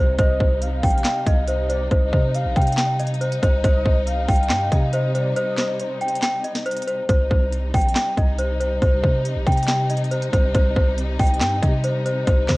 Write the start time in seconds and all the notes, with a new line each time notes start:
Already playing: C2 C3 G3 D#4 C5
0.18 C2 D#4 C5 D#5, kick, closed hi-hat
0.40 C2 C5, kick
0.62 F5, closed hi-hat
0.83 A#1 G5, kick, closed hi-hat, open hi-hat
0.90 closed hi-hat
0.98 closed hi-hat
1.05 G5, snare, clap, closed hi-hat
1.27 C2 D#5, kick, closed hi-hat
1.48 C5 D#5, closed hi-hat
1.70 C5 D5, closed hi-hat
1.91 C2 C5 D#5, kick, closed hi-hat
2.13 C3 C5, kick
2.35 F5, closed hi-hat
2.45 A#1
2.56 C3 G5, kick, closed hi-hat
2.62 closed hi-hat
2.67 closed hi-hat
2.72 closed hi-hat
2.77 G5, snare, clap, closed hi-hat
2.99 D#5, closed hi-hat
3.07 closed hi-hat
3.14 closed hi-hat
3.21 C5, closed hi-hat
3.32 closed hi-hat
3.42 C2 C5, kick, closed hi-hat
3.64 C2 C3 G3 C5 D#5, kick, closed hi-hat
3.85 C2 C5, kick
4.07 F5, closed hi-hat
4.29 C2 G5, kick, closed hi-hat, open hi-hat
4.36 closed hi-hat
4.43 closed hi-hat
4.50 G2 G5, snare, clap, closed hi-hat
4.72 C3 D#5, kick, closed hi-hat
4.93 C5 D#5, closed hi-hat
5.15 C5 D5, closed hi-hat
5.37 C5 D#5, closed hi-hat
5.58 C5, snare, clap
5.80 C5, closed hi-hat
6.01 G5, closed hi-hat
6.09 closed hi-hat
6.16 closed hi-hat
6.23 G5, snare, clap, closed hi-hat
6.44 D#5, closed hi-hat
6.55 snare, closed hi-hat
6.66 C5, closed hi-hat
6.71 closed hi-hat
6.77 closed hi-hat
6.82 closed hi-hat
6.88 C5, closed hi-hat
7.09 C2 C3 G3 D#4 C5, kick, closed hi-hat
7.31 C2 C5, kick
7.53 closed hi-hat
7.74 A#1 G5, kick, closed hi-hat, open hi-hat
7.81 closed hi-hat
7.88 closed hi-hat
7.96 G5, snare, clap, closed hi-hat
8.17 C2 D#5, kick, closed hi-hat
8.39 C5, closed hi-hat
8.60 C5, closed hi-hat
8.82 C2 C5, kick, closed hi-hat
9.03 C3 C5, kick
9.25 closed hi-hat
9.36 A#1
9.47 C3 G5, kick, closed hi-hat
9.52 closed hi-hat
9.57 closed hi-hat
9.63 closed hi-hat
9.68 G5, snare, clap, closed hi-hat
9.90 D#5, closed hi-hat
9.97 closed hi-hat
10.04 closed hi-hat
10.11 C5, closed hi-hat
10.22 closed hi-hat
10.33 C2 C5, kick, closed hi-hat
10.55 C2 C5, kick, closed hi-hat
10.76 C2 C5, kick
10.98 closed hi-hat
11.19 C2 G5, kick, closed hi-hat, open hi-hat
11.27 closed hi-hat
11.34 closed hi-hat
11.41 G2 G5, snare, clap, closed hi-hat
11.62 C3 D#5, kick, closed hi-hat
11.84 C5, closed hi-hat
12.06 C5, closed hi-hat
12.27 C2 C5, kick, closed hi-hat
12.49 C3 C5, kick, snare, clap